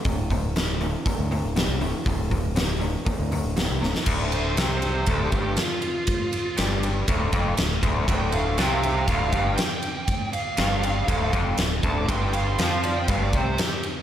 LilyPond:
<<
  \new Staff \with { instrumentName = "Lead electric guitar" } { \time 4/4 \key d \minor \tempo 4 = 120 r1 | r1 | r8 c''4. a'16 g'8. f'4~ | f'4 r2. |
g''8 f''8 g''16 f''4. g''4~ g''16~ | g''8 f''2 r4 a''16 d'''16 | c'''16 g''16 f''16 c'''16 g''16 f''16 d''16 g''16 f''16 d''16 c''8 g'8 r8 | }
  \new Staff \with { instrumentName = "Overdriven electric guitar" } { \clef bass \time 4/4 \key d \minor <d, a,>8 <d, a,>8 <d, b,>8 <d, a,>8 <d, a,>8 <d, a,>8 <d, b,>8 <d, a,>8 | <d, a,>8 <d, a,>8 <d, b,>8 <d, a,>8 <d, a,>8 <d, a,>8 <d, b,>8 <d, a,>8 | d,4 c4 d,8 g,8 r4 | r4 g,4 d,8 f,8 d,8 d,8 |
d,4 c4 d,8 g,8 r4 | r4 g,4 d,8 f,8 d,8 d,8 | g,4 f4 g,8 c8 r4 | }
  \new Staff \with { instrumentName = "Fingered electric bass" } { \clef bass \time 4/4 \key d \minor d,,2 r16 d,8 d,,8 c,16 d,,16 r16 | d,,2 r16 d,8 d,,8 c,16 d,,16 r16 | d,,4 c,4 d,,8 g,,8 r4 | r4 g,,4 d,,8 f,,8 d,,8 d,,8 |
d,,4 c,4 d,,8 g,,8 r4 | r4 g,,4 d,,8 f,,8 d,,8 d,,8 | g,,4 f,4 g,,8 c,8 r4 | }
  \new DrumStaff \with { instrumentName = "Drums" } \drummode { \time 4/4 <hho bd>8 <hho bd>8 <hho sn>8 hho8 <hho bd>8 hho8 <hho sn>8 hho8 | <hho bd>8 <hho bd>8 <hho sn>8 hho8 <hho bd>8 hho8 <hho sn>8 sn16 sn16 | <cymc bd>8 cymr8 <cymr sn>8 cymr8 <bd cymr>8 <bd cymr>8 <cymr sn>8 cymr8 | <bd cymr>8 cymr8 <cymr sn>8 cymr8 <bd cymr>8 <bd cymr>8 <cymr sn>8 <bd cymr>8 |
<bd cymr>8 cymr8 <cymr sn>8 cymr8 <bd cymr>8 <bd cymr>8 <cymr sn>8 cymr8 | <bd cymr>8 cymr8 <cymr sn>8 cymr8 <bd cymr>8 <bd cymr>8 <cymr sn>8 <bd cymr>8 | <bd cymr>8 cymr8 <cymr sn>8 cymr8 <bd cymr>8 <bd cymr>8 <cymr sn>8 cymr8 | }
>>